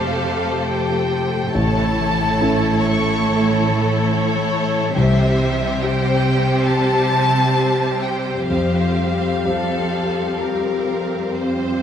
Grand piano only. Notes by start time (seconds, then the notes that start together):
Already playing: F2 C4 G4
1.54 A1
2.41 C#4 E4 A4
4.96 C2
5.82 C4 G4
8.50 F2
9.45 C4 G4